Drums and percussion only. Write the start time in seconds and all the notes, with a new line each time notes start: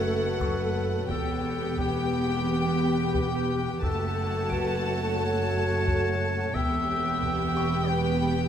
0.41 taiko
1.10 taiko
1.78 taiko
3.15 taiko
3.83 taiko
4.51 taiko
5.88 taiko
6.56 taiko
7.23 taiko